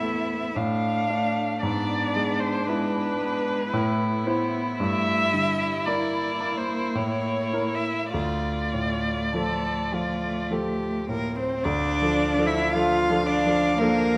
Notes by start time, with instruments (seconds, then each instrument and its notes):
Already playing: grand piano A2 E3 A3 E4 C5, cello B3, violin E4 E5
0.02 grand piano A3
0.55 grand piano A2, cello A3, violin D4 F5
1.10 cello A3, grand piano D4 D5
1.61 grand piano G#2, cello B3, violin D4 D5
2.16 grand piano G#3
2.40 violin C5
2.66 cello G#3, grand piano B3 E4 B4, violin B4
3.20 cello G#3, grand piano B3
3.72 grand piano A2, cello A3, violin E4
4.25 cello B3, grand piano E4 C5
4.79 grand piano G2, cello A3, violin E5
5.32 grand piano D3, cello G3
5.85 cello A#3, grand piano A#3 E4 D5, violin D5
6.40 grand piano A#3
6.57 violin C5
6.95 grand piano A2, violin C#5
7.53 grand piano E4 A#4
7.74 violin E5
8.13 grand piano D2, cello A3, violin F4 D5
8.74 grand piano A2
9.34 grand piano F3 F4 A4, violin A4
9.93 grand piano F3, violin F4
10.51 grand piano F3 F4 A4, violin G4
11.08 grand piano A2, cello A#3, violin A#4
11.36 cello C4, violin C5
11.64 grand piano D2, cello D4, violin D5 F5
12.02 grand piano F3 D4 A4
12.38 grand piano F3 D4 A4
12.47 cello E4, violin E5
12.73 grand piano F3 D4 A4, cello F4, violin F5
13.10 grand piano F3 D4 A4
13.26 cello D4, violin D5
13.45 grand piano F3 D4 A4
13.78 grand piano F3 D4 A4, cello A#3, violin A#4